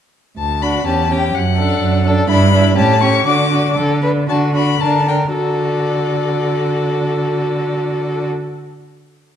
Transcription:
0.38 cello D2, violin A5
0.62 viola D4, violin F#4 B5
0.85 cello E2, viola C#4, violin G4 A5
1.10 viola C#4, violin G4 G5
1.34 cello F#2, violin F#5
1.58 viola D4, violin A4
1.81 cello F#2
2.06 viola D4, violin A4
2.28 cello G2, viola D4, violin E4 B5
2.53 viola D4, violin E4
2.77 cello A2, viola C#4, violin G4 A5
3.01 viola C#4, violin G4 C#6
3.26 cello D3, viola D4, violin F#4 D6
3.51 viola D4, violin F#4
3.76 cello D3, violin A4
4.02 viola D4, violin B4
4.28 cello D3, viola D4, violin F#4 A5
4.54 viola D4, violin F#4 B5
4.80 cello D3, viola D4, violin A#4 A5
5.06 viola D4, violin A#4 G5
5.35 cello D3, viola F#4, violin A4 D5

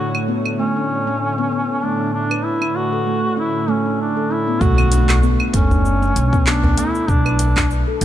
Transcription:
Already playing: analog synth pad A2 D3 A3 C#5, handpan D4, duduk F#4
0.15 claves
0.28 handpan B3
0.46 claves
0.59 handpan A3, duduk C#4
0.77 handpan D4
1.07 handpan C#4
1.38 handpan B3
1.52 handpan B3
1.82 handpan A3, duduk D4
2.14 duduk D4
2.31 handpan B4, claves
2.44 duduk E4
2.61 handpan D4, claves
2.76 duduk F#4
2.92 handpan A4
3.06 handpan A3
3.37 handpan C#4, duduk E4
3.68 handpan A3, duduk C#4
3.86 handpan D4
4.01 duduk D4
4.17 handpan A4
4.30 handpan C#4, duduk E4
4.48 handpan B3
4.61 upright bass B1, handpan A3, analog synth pad A3, duduk F#4, kick, impact, cabasa
4.78 cabasa, claves
4.92 handpan D4, closed hi-hat, djembe slap, cabasa
5.09 clap, djembe tone, cabasa, claves
5.23 handpan B3, cabasa
5.40 claves
5.53 upright bass F#1, handpan A3, duduk C#4, kick, closed hi-hat, djembe slap, djembe tone, cabasa
5.71 handpan D4, djembe bass, cabasa
5.85 cabasa
6.02 handpan C#4, djembe slap, cabasa
6.16 upright bass B1, closed hi-hat, cabasa
6.33 handpan B3, kick, cabasa
6.47 handpan B3, duduk D4, clap, cabasa
6.63 djembe tone, djembe bass
6.77 handpan A3, duduk E4, closed hi-hat, djembe tone, cabasa
6.95 cabasa
7.08 upright bass B1, duduk D4, kick, cabasa
7.26 handpan B4, cabasa, claves
7.39 closed hi-hat, djembe slap, cabasa
7.57 handpan D4, kick, clap, djembe tone, cabasa, claves
7.70 cabasa
7.88 handpan A4
8.01 upright bass F#1, handpan A3, closed hi-hat, djembe slap, djembe tone, cabasa

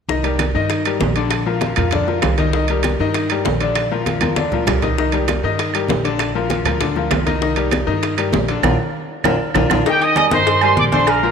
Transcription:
0.08 upright bass C2, grand piano D#3 D#4 D#5, high bongo, high conga
0.23 grand piano G3 G4 A#4, high bongo, high conga, high timbale
0.39 high bongo, high conga, high timbale, low timbale, claves
0.55 upright bass G2, grand piano D#3 D#4 D#5, high conga
0.70 high bongo, high conga, high timbale
0.85 grand piano G3 G4 A#4, high bongo, high conga, high timbale, claves
1.00 upright bass A#1, high bongo, low bongo, high conga, low timbale
1.16 grand piano D3 D4 D5, high bongo, high timbale
1.31 high bongo, high conga, high timbale, claves
1.46 grand piano F3 F4 A#4, high conga
1.61 high bongo, high conga, high timbale, low timbale
1.76 upright bass F2, grand piano F3 F4 A#4, high bongo, high conga, low conga, high timbale, claves
1.91 grand piano D3 D4 D5, high bongo, high conga, low conga, high timbale
2.08 grand piano F3 F4 A#4, high bongo, high conga
2.22 upright bass C2, high bongo, low bongo, high conga, high timbale, low timbale, claves
2.38 grand piano D#3 D#4 D#5, high bongo, high conga, high timbale
2.53 grand piano D#3 D#4 D#5, high bongo, high conga
2.68 grand piano G3 G4 A#4, high bongo, high conga, high timbale
2.83 high bongo, high conga, high timbale, low timbale, claves
2.99 upright bass G2, grand piano D#3 D#4 D#5, high conga
3.14 high bongo, high conga, high timbale
3.30 grand piano G3 G4 A#4, high bongo, high conga, high timbale, claves
3.45 upright bass A#1, high bongo, low bongo, high conga, low timbale
3.61 grand piano D3 D4 D5, high bongo, high timbale
3.75 high bongo, high conga, high timbale, claves
3.91 grand piano F3 F4 A#4, high conga
4.06 high bongo, high conga, high timbale, low timbale
4.20 upright bass D2, grand piano F3 F4 A#4, high bongo, high conga, high timbale, claves
4.36 grand piano D3 D4 D5, high bongo, high conga, high timbale
4.52 grand piano F3 F4 A#4, high bongo, low conga
4.67 upright bass C2, high bongo, low bongo, low conga, high timbale, low timbale, claves
4.82 grand piano D#3 D#4 D#5, high bongo, low conga, high timbale
4.98 grand piano D#3 D#4 D#5, high bongo, high conga
5.12 grand piano G3 G4 A#4, high bongo, high conga, high timbale
5.28 high bongo, high conga, high timbale, low timbale, claves
5.43 upright bass G2, grand piano D#3 D#4 D#5, high conga
5.59 high bongo, high conga, high timbale
5.74 grand piano G3 G4 A#4, high bongo, high conga, high timbale, claves
5.88 upright bass A#1, high bongo, low bongo, high conga, low timbale
6.04 grand piano D3 D4 D5, high bongo, high conga, high timbale
6.19 high bongo, high conga, high timbale, claves
6.35 grand piano F3 F4 A#4, high conga
6.50 high bongo, high conga, high timbale, low timbale
6.65 upright bass D2, grand piano F3 F4 A#4, high bongo, high conga, low conga, high timbale, claves
6.81 grand piano D3 D4 D5, high bongo, high conga, low conga, high timbale
6.96 grand piano F3 F4 A#4, high bongo, high conga
7.11 upright bass C2, high bongo, low bongo, high conga, high timbale, low timbale, claves
7.26 grand piano D#3 D#4 D#5, high bongo, high conga, high timbale
7.42 grand piano D#3 D#4 D#5, high bongo, high conga
7.56 grand piano G3 G4 A#4, high bongo, high conga, high timbale
7.71 high bongo, high conga, high timbale, low timbale, claves
7.87 upright bass G2, grand piano D#3 D#4 D#5, high conga
8.03 high bongo, high conga, high timbale
8.18 grand piano G3 G4 A#4, high bongo, high conga, high timbale, claves
8.33 upright bass A#1, high bongo, low bongo, high conga, low timbale
8.48 grand piano D3 D4 D5, high bongo, high conga, high timbale
8.63 upright bass A#1, grand piano D4 F4 A#4, low bongo, high conga, high timbale, claves
9.24 upright bass A#1, grand piano D4 F4 A#4, low bongo, high conga, high timbale, claves
9.54 upright bass A#1, grand piano D4 F4 A#4, low bongo, high conga, high timbale, claves
9.70 upright bass A#1, grand piano D4 F4 A#4, low bongo, high conga, high timbale, claves
9.86 grand piano D#3 D#4 D#5, trumpet section G4 G5, cowbell, high conga, low agogo
10.01 trumpet section D#5 D#6, high conga, low agogo
10.16 grand piano G3 G4 A#4, trumpet section D#5 D#6, cowbell, high conga, low agogo, claves
10.30 upright bass G2, grand piano D#3 D#4 D#5, trumpet section C5 C6, cowbell, high conga
10.47 cowbell, high conga, low agogo
10.61 grand piano G3 G4 A#4, trumpet section C5 C6, high conga, low agogo, claves
10.77 upright bass A#1, trumpet section D5 D6, cowbell, high conga
10.92 grand piano D3 D4 D5, trumpet section C5 C6, cowbell, high conga, low agogo
11.07 trumpet section A#4 A#5, cowbell, low agogo, claves
11.23 grand piano F3 F4 A#4, high conga

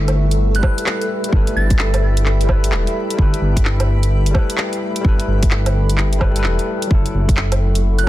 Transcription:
Already playing: detuned saw bass G1, tine electric piano G3 E4 A4 B4, ambient pad A4 E5 G5 B5
0.08 closed hi-hat, low woodblock
0.31 closed hi-hat
0.55 tine electric piano G3, synth bell F#6, closed hi-hat
0.61 tine electric piano E4 A4, kick, low woodblock
0.66 tine electric piano B4
0.78 closed hi-hat
0.86 clap
1.01 closed hi-hat
1.24 closed hi-hat
1.29 tine electric piano G3 E4, kick
1.33 detuned saw bass G1, tine electric piano A4 B4
1.47 closed hi-hat
1.56 detuned saw bass G1, synth bell A6
1.70 kick, closed hi-hat
1.79 clap
1.94 closed hi-hat, low woodblock
2.17 closed hi-hat
2.26 clap
2.41 tine electric piano G3, closed hi-hat
2.47 detuned saw bass G1, tine electric piano E4 A4, kick, low woodblock
2.52 tine electric piano B4
2.64 closed hi-hat
2.72 detuned saw bass E1, clap
2.87 closed hi-hat
3.10 tine electric piano G3, closed hi-hat
3.17 detuned saw bass G1, tine electric piano E4 A4, kick
3.22 tine electric piano B4
3.34 closed hi-hat
3.42 detuned saw bass G1
3.57 kick, closed hi-hat
3.65 clap
3.80 closed hi-hat, low woodblock
4.03 closed hi-hat
4.26 closed hi-hat
4.31 tine electric piano G3 E4, low woodblock
4.35 tine electric piano A4 B4, kick
4.50 closed hi-hat
4.58 clap
4.73 closed hi-hat
4.96 closed hi-hat
5.01 detuned saw bass G1, tine electric piano G3 E4, kick
5.06 tine electric piano A4 B4
5.20 closed hi-hat
5.28 detuned saw bass G1
5.43 kick, closed hi-hat
5.51 clap
5.66 closed hi-hat, low woodblock
5.90 closed hi-hat
5.98 clap
6.13 closed hi-hat
6.19 detuned saw bass G1, tine electric piano G3 E4 A4 B4, kick, low woodblock
6.31 tine electric piano G3 E4
6.36 tine electric piano A4 B4, closed hi-hat
6.44 detuned saw bass E1, clap
6.59 closed hi-hat
6.82 closed hi-hat
6.87 tine electric piano F#3 E4
6.91 detuned saw bass F#1, ambient pad A4 E5 F#5 C#6, tine electric piano A4, kick
7.06 closed hi-hat
7.14 detuned saw bass F#1
7.29 kick, closed hi-hat
7.37 clap
7.52 closed hi-hat, low woodblock
7.75 closed hi-hat
7.98 synth bell F#6, closed hi-hat
8.03 tine electric piano F#3

